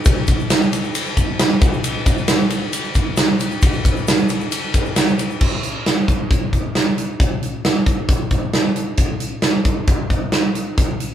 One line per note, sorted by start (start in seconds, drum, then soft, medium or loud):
0.05 kick loud
0.05 ride medium
0.05 shaker medium
0.27 kick medium
0.27 ride medium
0.27 shaker medium
0.39 shaker soft
0.50 snare loud
0.50 ride loud
0.50 shaker medium
0.62 shaker soft
0.73 ride medium
0.73 shaker medium
0.84 shaker soft
0.95 ride loud
0.95 shaker medium
1.06 shaker soft
1.17 kick medium
1.17 ride medium
1.17 shaker medium
1.39 snare loud
1.39 ride loud
1.39 shaker medium
1.61 kick loud
1.61 ride medium
1.61 shaker medium
1.73 shaker soft
1.84 ride loud
1.84 shaker medium
2.06 kick medium
2.06 ride medium
2.06 shaker medium
2.18 shaker soft
2.28 snare loud
2.28 ride loud
2.28 shaker medium
2.50 ride medium
2.50 shaker medium
2.73 ride loud
2.73 shaker medium
2.84 shaker soft
2.95 kick medium
2.95 ride medium
2.95 shaker medium
3.17 snare loud
3.17 ride medium
3.17 shaker medium
3.40 ride medium
3.40 shaker medium
3.51 shaker soft
3.62 kick loud
3.62 ride loud
3.62 shaker medium
3.73 shaker soft
3.85 kick medium
3.85 ride medium
3.85 shaker medium
3.97 shaker soft
4.08 snare loud
4.08 ride loud
4.08 shaker medium
4.29 ride medium
4.29 shaker medium
4.41 shaker soft
4.52 ride loud
4.52 shaker medium
4.74 kick medium
4.74 ride medium
4.74 shaker medium
4.85 shaker soft
4.96 snare loud
4.96 ride medium
4.96 shaker medium
5.08 shaker soft
5.19 ride medium
5.19 shaker medium
5.30 shaker soft
5.41 kick loud
5.41 crash medium
5.63 closed hi-hat medium
5.86 snare loud
5.86 closed hi-hat medium
6.08 kick medium
6.08 closed hi-hat medium
6.31 kick loud
6.31 closed hi-hat medium
6.53 kick medium
6.53 closed hi-hat soft
6.75 snare medium
6.75 closed hi-hat medium
6.98 closed hi-hat medium
7.20 kick loud
7.20 closed hi-hat medium
7.43 closed hi-hat medium
7.65 snare loud
7.65 closed hi-hat medium
7.86 kick medium
7.86 closed hi-hat medium
8.09 kick loud
8.09 closed hi-hat medium
8.31 kick medium
8.31 closed hi-hat medium
8.53 snare medium
8.53 closed hi-hat medium
8.76 closed hi-hat medium
8.97 kick loud
8.97 closed hi-hat medium
9.20 closed hi-hat medium
9.42 snare loud
9.42 closed hi-hat medium
9.65 kick medium
9.65 closed hi-hat medium
9.87 kick loud
9.87 closed hi-hat medium
10.10 kick medium
10.10 closed hi-hat medium
10.32 snare medium
10.32 closed hi-hat medium
10.55 closed hi-hat medium
10.77 kick medium
10.77 closed hi-hat medium
11.00 closed hi-hat medium